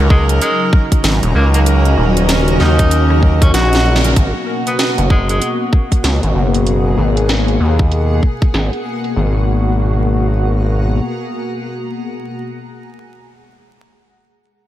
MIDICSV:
0, 0, Header, 1, 7, 480
1, 0, Start_track
1, 0, Key_signature, 5, "minor"
1, 0, Tempo, 625000
1, 1278, Time_signature, 4, 2, 24, 8
1, 11270, End_track
2, 0, Start_track
2, 0, Title_t, "Ambient pad"
2, 0, Program_c, 0, 92
2, 0, Note_on_c, 0, 61, 99
2, 0, Note_on_c, 0, 66, 99
2, 0, Note_on_c, 0, 68, 96
2, 0, Note_on_c, 0, 78, 99
2, 0, Note_on_c, 0, 82, 83
2, 165, Note_on_c, 0, 75, 89
2, 634, Note_off_c, 0, 68, 0
2, 916, Note_off_c, 0, 78, 0
2, 3341, Note_on_c, 0, 68, 74
2, 3825, Note_on_c, 0, 78, 88
2, 4104, Note_off_c, 0, 61, 0
2, 4307, Note_off_c, 0, 66, 0
2, 4548, Note_off_c, 0, 75, 0
2, 7039, Note_off_c, 0, 68, 0
2, 7039, Note_off_c, 0, 82, 0
2, 7040, Note_off_c, 0, 78, 0
2, 7127, Note_on_c, 0, 68, 81
2, 7199, Note_on_c, 0, 78, 76
2, 7256, Note_on_c, 0, 82, 76
2, 9540, Note_off_c, 0, 78, 0
2, 9540, Note_off_c, 0, 82, 0
2, 9542, Note_off_c, 0, 68, 0
2, 11270, End_track
3, 0, Start_track
3, 0, Title_t, "Horn section"
3, 0, Program_c, 1, 61
3, 0, Note_on_c, 1, 61, 103
3, 0, Note_on_c, 1, 63, 92
3, 0, Note_on_c, 1, 66, 91
3, 0, Note_on_c, 1, 70, 111
3, 537, Note_off_c, 1, 61, 0
3, 537, Note_off_c, 1, 63, 0
3, 537, Note_off_c, 1, 66, 0
3, 537, Note_off_c, 1, 70, 0
3, 559, Note_on_c, 1, 66, 79
3, 559, Note_on_c, 1, 70, 98
3, 560, Note_on_c, 1, 61, 88
3, 560, Note_on_c, 1, 63, 81
3, 642, Note_off_c, 1, 61, 0
3, 642, Note_off_c, 1, 63, 0
3, 642, Note_off_c, 1, 66, 0
3, 642, Note_off_c, 1, 70, 0
3, 1185, Note_on_c, 1, 66, 84
3, 1186, Note_on_c, 1, 61, 92
3, 1186, Note_on_c, 1, 63, 82
3, 1186, Note_on_c, 1, 70, 102
3, 1238, Note_off_c, 1, 63, 0
3, 1238, Note_off_c, 1, 66, 0
3, 1238, Note_off_c, 1, 70, 0
3, 1239, Note_off_c, 1, 61, 0
3, 1279, Note_on_c, 1, 61, 94
3, 1279, Note_on_c, 1, 66, 85
3, 1279, Note_on_c, 1, 70, 103
3, 1280, Note_on_c, 1, 63, 86
3, 1630, Note_off_c, 1, 61, 0
3, 1630, Note_off_c, 1, 63, 0
3, 1630, Note_off_c, 1, 66, 0
3, 1630, Note_off_c, 1, 70, 0
3, 1665, Note_on_c, 1, 61, 99
3, 1665, Note_on_c, 1, 66, 91
3, 1665, Note_on_c, 1, 70, 110
3, 1666, Note_on_c, 1, 63, 87
3, 2456, Note_off_c, 1, 61, 0
3, 2456, Note_off_c, 1, 63, 0
3, 2456, Note_off_c, 1, 66, 0
3, 2456, Note_off_c, 1, 70, 0
3, 2478, Note_on_c, 1, 61, 89
3, 2478, Note_on_c, 1, 63, 83
3, 2478, Note_on_c, 1, 70, 99
3, 2479, Note_on_c, 1, 66, 82
3, 2561, Note_off_c, 1, 70, 0
3, 2562, Note_off_c, 1, 61, 0
3, 2562, Note_off_c, 1, 63, 0
3, 2562, Note_off_c, 1, 66, 0
3, 3107, Note_on_c, 1, 61, 95
3, 3107, Note_on_c, 1, 63, 84
3, 3107, Note_on_c, 1, 66, 84
3, 3107, Note_on_c, 1, 70, 101
3, 3159, Note_off_c, 1, 61, 0
3, 3159, Note_off_c, 1, 63, 0
3, 3159, Note_off_c, 1, 66, 0
3, 3159, Note_off_c, 1, 70, 0
3, 11270, End_track
4, 0, Start_track
4, 0, Title_t, "Analog synth pad"
4, 0, Program_c, 2, 89
4, 0, Note_on_c, 2, 49, 79
4, 0, Note_on_c, 2, 54, 72
4, 0, Note_on_c, 2, 63, 87
4, 3169, Note_off_c, 2, 49, 0
4, 3169, Note_off_c, 2, 54, 0
4, 3170, Note_off_c, 2, 63, 0
4, 3195, Note_on_c, 2, 47, 80
4, 3196, Note_on_c, 2, 58, 72
4, 3196, Note_on_c, 2, 66, 87
4, 5098, Note_off_c, 2, 66, 0
4, 5119, Note_on_c, 2, 68, 85
4, 7006, Note_off_c, 2, 47, 0
4, 7007, Note_off_c, 2, 58, 0
4, 7020, Note_off_c, 2, 68, 0
4, 7037, Note_on_c, 2, 58, 69
4, 7038, Note_on_c, 2, 66, 83
4, 7039, Note_on_c, 2, 47, 75
4, 9541, Note_off_c, 2, 58, 0
4, 9542, Note_off_c, 2, 47, 0
4, 9542, Note_off_c, 2, 66, 0
4, 11270, End_track
5, 0, Start_track
5, 0, Title_t, "Tenor saxophone"
5, 0, Program_c, 3, 66
5, 78, Note_on_c, 3, 56, 98
5, 195, Note_off_c, 3, 56, 0
5, 318, Note_on_c, 3, 56, 96
5, 499, Note_off_c, 3, 56, 0
5, 1040, Note_on_c, 3, 58, 93
5, 1133, Note_off_c, 3, 58, 0
5, 1183, Note_on_c, 3, 58, 82
5, 1244, Note_off_c, 3, 58, 0
5, 1997, Note_on_c, 3, 63, 99
5, 2478, Note_off_c, 3, 63, 0
5, 2624, Note_on_c, 3, 61, 89
5, 2699, Note_off_c, 3, 61, 0
5, 2718, Note_on_c, 3, 66, 104
5, 3104, Note_off_c, 3, 66, 0
5, 3586, Note_on_c, 3, 59, 89
5, 3645, Note_off_c, 3, 59, 0
5, 3681, Note_on_c, 3, 59, 72
5, 3773, Note_off_c, 3, 59, 0
5, 3919, Note_on_c, 3, 56, 91
5, 4036, Note_off_c, 3, 56, 0
5, 4068, Note_on_c, 3, 56, 92
5, 4213, Note_off_c, 3, 56, 0
5, 11270, End_track
6, 0, Start_track
6, 0, Title_t, "Analog synth bass"
6, 0, Program_c, 4, 38
6, 0, Note_on_c, 4, 37, 100
6, 303, Note_off_c, 4, 37, 0
6, 797, Note_on_c, 4, 32, 96
6, 921, Note_off_c, 4, 32, 0
6, 945, Note_on_c, 4, 27, 99
6, 1024, Note_off_c, 4, 27, 0
6, 1037, Note_on_c, 4, 37, 101
6, 1503, Note_off_c, 4, 37, 0
6, 1518, Note_on_c, 4, 27, 94
6, 1983, Note_off_c, 4, 27, 0
6, 2000, Note_on_c, 4, 39, 96
6, 2704, Note_off_c, 4, 39, 0
6, 2720, Note_on_c, 4, 34, 98
6, 3184, Note_off_c, 4, 34, 0
6, 3199, Note_on_c, 4, 32, 98
6, 3321, Note_off_c, 4, 32, 0
6, 3826, Note_on_c, 4, 30, 96
6, 4144, Note_off_c, 4, 30, 0
6, 4638, Note_on_c, 4, 37, 96
6, 4761, Note_off_c, 4, 37, 0
6, 4785, Note_on_c, 4, 32, 91
6, 4863, Note_off_c, 4, 32, 0
6, 4877, Note_on_c, 4, 30, 93
6, 5343, Note_off_c, 4, 30, 0
6, 5358, Note_on_c, 4, 32, 93
6, 5823, Note_off_c, 4, 32, 0
6, 5839, Note_on_c, 4, 39, 91
6, 6304, Note_off_c, 4, 39, 0
6, 6558, Note_on_c, 4, 32, 91
6, 6681, Note_off_c, 4, 32, 0
6, 7039, Note_on_c, 4, 32, 95
6, 8448, Note_off_c, 4, 32, 0
6, 11270, End_track
7, 0, Start_track
7, 0, Title_t, "Drums"
7, 79, Note_on_c, 9, 36, 103
7, 156, Note_off_c, 9, 36, 0
7, 225, Note_on_c, 9, 42, 52
7, 302, Note_off_c, 9, 42, 0
7, 319, Note_on_c, 9, 42, 68
7, 396, Note_off_c, 9, 42, 0
7, 559, Note_on_c, 9, 36, 100
7, 560, Note_on_c, 9, 37, 39
7, 636, Note_off_c, 9, 36, 0
7, 637, Note_off_c, 9, 37, 0
7, 705, Note_on_c, 9, 36, 61
7, 705, Note_on_c, 9, 42, 53
7, 782, Note_off_c, 9, 36, 0
7, 782, Note_off_c, 9, 42, 0
7, 798, Note_on_c, 9, 38, 112
7, 798, Note_on_c, 9, 42, 66
7, 875, Note_off_c, 9, 38, 0
7, 875, Note_off_c, 9, 42, 0
7, 944, Note_on_c, 9, 42, 35
7, 1021, Note_off_c, 9, 42, 0
7, 1184, Note_on_c, 9, 42, 53
7, 1261, Note_off_c, 9, 42, 0
7, 1278, Note_on_c, 9, 42, 67
7, 1355, Note_off_c, 9, 42, 0
7, 1424, Note_on_c, 9, 42, 38
7, 1501, Note_off_c, 9, 42, 0
7, 1665, Note_on_c, 9, 42, 54
7, 1742, Note_off_c, 9, 42, 0
7, 1757, Note_on_c, 9, 38, 120
7, 1757, Note_on_c, 9, 42, 67
7, 1834, Note_off_c, 9, 38, 0
7, 1834, Note_off_c, 9, 42, 0
7, 1904, Note_on_c, 9, 42, 38
7, 1981, Note_off_c, 9, 42, 0
7, 1997, Note_on_c, 9, 38, 60
7, 2073, Note_off_c, 9, 38, 0
7, 2143, Note_on_c, 9, 42, 56
7, 2144, Note_on_c, 9, 36, 105
7, 2220, Note_off_c, 9, 42, 0
7, 2221, Note_off_c, 9, 36, 0
7, 2237, Note_on_c, 9, 42, 66
7, 2314, Note_off_c, 9, 42, 0
7, 2383, Note_on_c, 9, 37, 58
7, 2460, Note_off_c, 9, 37, 0
7, 2478, Note_on_c, 9, 36, 61
7, 2555, Note_off_c, 9, 36, 0
7, 2624, Note_on_c, 9, 36, 107
7, 2625, Note_on_c, 9, 37, 20
7, 2625, Note_on_c, 9, 42, 56
7, 2649, Note_off_c, 9, 37, 0
7, 2649, Note_on_c, 9, 37, 22
7, 2672, Note_off_c, 9, 37, 0
7, 2672, Note_on_c, 9, 37, 25
7, 2694, Note_off_c, 9, 37, 0
7, 2694, Note_on_c, 9, 37, 27
7, 2701, Note_off_c, 9, 36, 0
7, 2702, Note_off_c, 9, 42, 0
7, 2719, Note_off_c, 9, 37, 0
7, 2719, Note_on_c, 9, 37, 29
7, 2719, Note_on_c, 9, 38, 68
7, 2719, Note_on_c, 9, 42, 68
7, 2754, Note_off_c, 9, 37, 0
7, 2754, Note_on_c, 9, 37, 34
7, 2791, Note_off_c, 9, 37, 0
7, 2791, Note_on_c, 9, 37, 35
7, 2796, Note_off_c, 9, 38, 0
7, 2796, Note_off_c, 9, 42, 0
7, 2829, Note_off_c, 9, 37, 0
7, 2829, Note_on_c, 9, 37, 37
7, 2864, Note_on_c, 9, 42, 39
7, 2879, Note_on_c, 9, 38, 83
7, 2906, Note_off_c, 9, 37, 0
7, 2941, Note_off_c, 9, 42, 0
7, 2955, Note_off_c, 9, 38, 0
7, 3039, Note_on_c, 9, 38, 102
7, 3106, Note_on_c, 9, 42, 54
7, 3116, Note_off_c, 9, 38, 0
7, 3183, Note_off_c, 9, 42, 0
7, 3198, Note_on_c, 9, 42, 64
7, 3199, Note_on_c, 9, 36, 115
7, 3275, Note_off_c, 9, 42, 0
7, 3276, Note_off_c, 9, 36, 0
7, 3585, Note_on_c, 9, 42, 54
7, 3662, Note_off_c, 9, 42, 0
7, 3678, Note_on_c, 9, 38, 118
7, 3678, Note_on_c, 9, 42, 69
7, 3755, Note_off_c, 9, 38, 0
7, 3755, Note_off_c, 9, 42, 0
7, 3825, Note_on_c, 9, 42, 36
7, 3902, Note_off_c, 9, 42, 0
7, 3919, Note_on_c, 9, 36, 106
7, 3996, Note_off_c, 9, 36, 0
7, 4066, Note_on_c, 9, 42, 54
7, 4143, Note_off_c, 9, 42, 0
7, 4160, Note_on_c, 9, 42, 67
7, 4236, Note_off_c, 9, 42, 0
7, 4399, Note_on_c, 9, 36, 97
7, 4475, Note_off_c, 9, 36, 0
7, 4545, Note_on_c, 9, 36, 59
7, 4545, Note_on_c, 9, 42, 55
7, 4622, Note_off_c, 9, 36, 0
7, 4622, Note_off_c, 9, 42, 0
7, 4639, Note_on_c, 9, 38, 114
7, 4639, Note_on_c, 9, 42, 68
7, 4716, Note_off_c, 9, 38, 0
7, 4716, Note_off_c, 9, 42, 0
7, 4785, Note_on_c, 9, 42, 35
7, 4862, Note_off_c, 9, 42, 0
7, 5026, Note_on_c, 9, 42, 53
7, 5103, Note_off_c, 9, 42, 0
7, 5119, Note_on_c, 9, 42, 64
7, 5196, Note_off_c, 9, 42, 0
7, 5507, Note_on_c, 9, 42, 53
7, 5584, Note_off_c, 9, 42, 0
7, 5599, Note_on_c, 9, 38, 118
7, 5599, Note_on_c, 9, 42, 67
7, 5676, Note_off_c, 9, 38, 0
7, 5676, Note_off_c, 9, 42, 0
7, 5747, Note_on_c, 9, 42, 36
7, 5824, Note_off_c, 9, 42, 0
7, 5985, Note_on_c, 9, 36, 101
7, 6062, Note_off_c, 9, 36, 0
7, 6079, Note_on_c, 9, 42, 65
7, 6156, Note_off_c, 9, 42, 0
7, 6319, Note_on_c, 9, 36, 58
7, 6396, Note_off_c, 9, 36, 0
7, 6465, Note_on_c, 9, 36, 99
7, 6465, Note_on_c, 9, 42, 52
7, 6542, Note_off_c, 9, 36, 0
7, 6542, Note_off_c, 9, 42, 0
7, 6559, Note_on_c, 9, 38, 112
7, 6559, Note_on_c, 9, 42, 65
7, 6636, Note_off_c, 9, 38, 0
7, 6636, Note_off_c, 9, 42, 0
7, 6705, Note_on_c, 9, 42, 36
7, 6782, Note_off_c, 9, 42, 0
7, 6945, Note_on_c, 9, 42, 49
7, 7022, Note_off_c, 9, 42, 0
7, 11270, End_track
0, 0, End_of_file